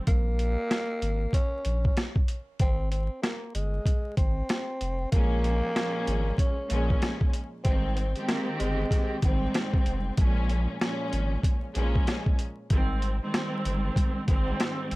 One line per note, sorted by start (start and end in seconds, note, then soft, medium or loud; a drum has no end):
0.07 0.56 A#1 loud
0.07 1.30 A#3 loud
0.07 kick loud
0.07 closed hi-hat medium
0.39 closed hi-hat medium
0.71 cross-stick medium
0.71 snare loud
0.71 closed hi-hat medium
1.02 1.27 G#1 medium
1.02 closed hi-hat medium
1.33 1.82 C#4 medium
1.33 kick medium
1.33 closed hi-hat medium
1.65 1.90 A#1 medium
1.65 closed hi-hat medium
1.85 1.96 C#4 medium
1.85 kick medium
1.97 cross-stick loud
1.97 snare loud
1.97 closed hi-hat medium
2.16 kick loud
2.28 closed hi-hat medium
2.60 3.09 G#1 loud
2.60 2.89 C4 loud
2.60 kick loud
2.60 closed hi-hat medium
2.91 3.20 C4 medium
2.91 closed hi-hat medium
3.22 3.51 A#3 medium
3.22 cross-stick medium
3.22 snare loud
3.22 closed hi-hat medium
3.54 3.79 G1 medium
3.54 4.14 G#3 medium
3.54 closed hi-hat medium
3.86 kick medium
3.86 closed hi-hat medium
4.17 4.42 G#1 loud
4.17 5.08 C4 medium
4.17 kick medium
4.17 closed hi-hat medium
4.49 cross-stick medium
4.49 snare loud
4.49 closed hi-hat medium
4.81 5.06 F1 loud
4.81 closed hi-hat medium
5.12 5.62 A#1 loud
5.12 5.72 A#2 medium
5.12 5.72 F3 medium
5.12 5.73 G#3 medium
5.12 6.35 A#3 loud
5.12 5.73 C#4 loud
5.12 kick loud
5.12 closed hi-hat loud
5.44 closed hi-hat medium
5.74 6.50 A#2 medium
5.74 6.50 F3 medium
5.74 6.51 G#3 medium
5.74 6.51 C#4 loud
5.74 cross-stick medium
5.74 snare loud
5.74 closed hi-hat medium
6.07 6.32 G#1 loud
6.07 closed hi-hat medium
6.38 6.87 C#4 medium
6.38 kick medium
6.38 closed hi-hat loud
6.69 6.95 A#1 medium
6.69 7.29 A#2 loud
6.69 7.30 F3 medium
6.69 7.30 G#3 medium
6.69 7.30 C#4 loud
6.69 closed hi-hat medium
6.90 7.01 C#4 medium
6.90 kick medium
7.02 cross-stick medium
7.02 snare loud
7.02 closed hi-hat medium
7.21 kick loud
7.33 closed hi-hat medium
7.64 8.14 G#1 loud
7.64 8.12 G#2 medium
7.64 8.12 D#3 medium
7.64 8.12 G3 medium
7.64 7.93 C4 loud
7.64 8.13 C4 loud
7.64 kick loud
7.64 closed hi-hat loud
7.95 8.24 C4 medium
7.95 closed hi-hat medium
8.16 9.16 D#3 medium
8.16 9.16 G#3 medium
8.16 9.17 C4 loud
8.16 9.17 G4 medium
8.16 closed hi-hat soft
8.27 8.56 A#3 medium
8.27 cross-stick medium
8.27 snare loud
8.27 closed hi-hat medium
8.59 8.85 G1 medium
8.59 9.19 G#3 medium
8.59 closed hi-hat medium
8.91 kick medium
8.91 snare soft
8.91 closed hi-hat loud
9.22 9.47 G#1 loud
9.22 10.12 G#2 loud
9.22 10.12 D#3 medium
9.22 10.12 G3 medium
9.22 10.13 C4 loud
9.22 10.15 C4 medium
9.22 kick medium
9.22 closed hi-hat medium
9.54 cross-stick loud
9.54 snare loud
9.54 closed hi-hat medium
9.74 kick loud
9.86 10.11 F1 loud
9.86 closed hi-hat medium
10.17 10.67 A#1 loud
10.17 10.77 A#2 medium
10.17 10.78 F3 medium
10.17 10.78 G#3 medium
10.17 10.78 C#4 loud
10.17 kick loud
10.17 closed hi-hat medium
10.49 closed hi-hat medium
10.80 11.56 A#2 medium
10.80 11.56 F3 medium
10.80 11.56 G#3 medium
10.80 11.56 C#4 loud
10.80 cross-stick medium
10.80 snare loud
10.80 closed hi-hat medium
11.13 11.37 G#1 loud
11.13 closed hi-hat medium
11.43 kick medium
11.43 closed hi-hat medium
11.75 12.00 A#1 medium
11.75 12.35 A#2 loud
11.75 12.35 F3 medium
11.75 12.35 G#3 medium
11.75 12.35 C#4 loud
11.75 closed hi-hat medium
11.95 kick medium
12.07 cross-stick loud
12.07 snare loud
12.07 closed hi-hat medium
12.26 kick loud
12.39 closed hi-hat medium
12.70 13.20 G#1 loud
12.70 13.17 G#2 medium
12.70 13.17 D#3 medium
12.70 13.18 G3 medium
12.70 13.18 C4 loud
12.70 kick loud
12.70 closed hi-hat loud
13.02 closed hi-hat medium
13.21 14.22 D#3 medium
13.21 14.22 G3 medium
13.21 14.21 G#3 medium
13.21 14.22 C4 loud
13.34 cross-stick medium
13.34 snare loud
13.34 closed hi-hat medium
13.65 13.90 G1 loud
13.65 closed hi-hat medium
13.96 kick medium
13.96 closed hi-hat loud
14.28 14.53 G#1 loud
14.28 14.96 G#2 loud
14.28 14.96 D#3 medium
14.28 14.96 G3 loud
14.28 14.96 C4 loud
14.28 kick medium
14.28 closed hi-hat medium
14.60 cross-stick loud
14.60 snare loud
14.60 closed hi-hat medium
14.91 14.96 F1 loud
14.91 closed hi-hat medium